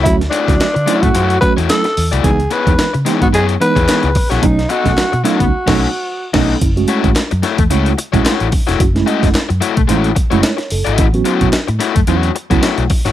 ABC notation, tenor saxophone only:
X:1
M:4/4
L:1/16
Q:"Swing 16ths" 1/4=110
K:F#dor
V:1 name="Tenor saxophone"
E2 =D4- D F3 B2 A3 z | G2 B3 z2 F G2 B4- B F | D2 F4 F8 z2 | z16 |
z16 | z16 |]